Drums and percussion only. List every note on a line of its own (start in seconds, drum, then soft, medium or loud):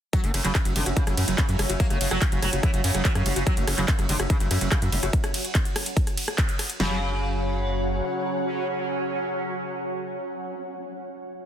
0.13 kick loud
0.13 closed hi-hat medium
0.24 closed hi-hat medium
0.34 cross-stick soft
0.34 open hi-hat loud
0.34 ride medium
0.45 clap soft
0.45 closed hi-hat medium
0.55 kick loud
0.55 cross-stick medium
0.55 clap loud
0.55 closed hi-hat medium
0.65 closed hi-hat medium
0.76 open hi-hat loud
0.76 ride medium
0.86 cross-stick soft
0.86 closed hi-hat medium
0.97 kick loud
0.97 closed hi-hat medium
1.07 cross-stick medium
1.07 closed hi-hat medium
1.17 open hi-hat loud
1.17 ride medium
1.28 closed hi-hat medium
1.38 kick loud
1.38 cross-stick soft
1.38 clap loud
1.38 closed hi-hat medium
1.49 closed hi-hat medium
1.59 cross-stick medium
1.59 open hi-hat medium
1.59 ride medium
1.70 closed hi-hat medium
1.80 kick loud
1.80 closed hi-hat medium
1.90 cross-stick soft
1.90 closed hi-hat medium
2.01 open hi-hat loud
2.01 ride medium
2.11 cross-stick medium
2.11 closed hi-hat medium
2.22 kick loud
2.22 clap loud
2.22 closed hi-hat medium
2.32 closed hi-hat medium
2.42 cross-stick soft
2.42 open hi-hat loud
2.42 ride medium
2.53 closed hi-hat medium
2.63 kick loud
2.63 cross-stick medium
2.63 closed hi-hat medium
2.74 closed hi-hat medium
2.84 open hi-hat loud
2.84 ride medium
2.95 cross-stick soft
2.95 closed hi-hat medium
3.05 kick loud
3.05 clap loud
3.05 closed hi-hat medium
3.15 cross-stick medium
3.15 closed hi-hat medium
3.26 open hi-hat loud
3.26 ride medium
3.36 closed hi-hat medium
3.47 kick loud
3.47 cross-stick soft
3.47 closed hi-hat medium
3.57 closed hi-hat medium
3.67 cross-stick medium
3.67 open hi-hat loud
3.67 ride medium
3.78 clap soft
3.78 closed hi-hat medium
3.88 kick loud
3.88 clap loud
3.88 closed hi-hat medium
3.99 cross-stick soft
3.99 closed hi-hat medium
4.09 open hi-hat loud
4.09 ride medium
4.20 cross-stick medium
4.20 closed hi-hat medium
4.30 kick loud
4.30 closed hi-hat medium
4.40 closed hi-hat medium
4.51 cross-stick soft
4.51 open hi-hat loud
4.51 ride medium
4.61 closed hi-hat medium
4.72 kick loud
4.72 cross-stick medium
4.72 clap loud
4.72 closed hi-hat medium
4.82 closed hi-hat medium
4.92 open hi-hat loud
4.92 ride medium
5.03 cross-stick soft
5.03 closed hi-hat medium
5.13 kick loud
5.13 closed hi-hat medium
5.24 cross-stick medium
5.24 closed hi-hat medium
5.34 open hi-hat loud
5.34 ride medium
5.45 closed hi-hat medium
5.55 kick loud
5.55 cross-stick soft
5.55 clap loud
5.55 closed hi-hat medium
5.65 closed hi-hat medium
5.76 cross-stick medium
5.76 open hi-hat loud
5.76 ride medium
5.86 closed hi-hat medium
5.97 kick loud
5.97 closed hi-hat medium
6.07 cross-stick soft
6.07 closed hi-hat medium
6.17 open hi-hat loud
6.17 ride medium
6.28 cross-stick medium
6.28 closed hi-hat medium
6.38 kick loud
6.38 clap loud
6.38 closed hi-hat medium
6.49 closed hi-hat medium
6.59 cross-stick soft
6.59 open hi-hat medium
6.59 ride medium
6.70 closed hi-hat medium
6.80 snare loud